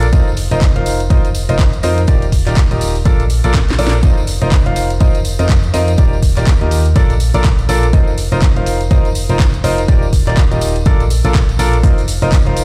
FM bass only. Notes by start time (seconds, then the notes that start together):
Already playing: A#1
0.13 F1
0.51 F1
0.76 F1
1.10 F1
1.49 F1
1.83 F2
2.08 D#1
2.47 D#1
2.71 D#1
3.05 A#1
3.44 A#1
3.79 A#1
4.03 F1
4.42 F1
4.66 F1
5.01 F1
5.39 F2
5.74 F2
5.98 D#1
6.37 D#1
6.61 D#2
6.96 A#1
7.34 A#1
7.69 A#1
7.93 F1
8.32 F1
8.56 F1
8.91 F1
9.29 F1
9.64 F1
9.88 D#1
10.27 D#1
10.51 D#1
10.86 A#1
11.25 A#1
11.59 A#1
11.83 F1
12.22 F1
12.46 F1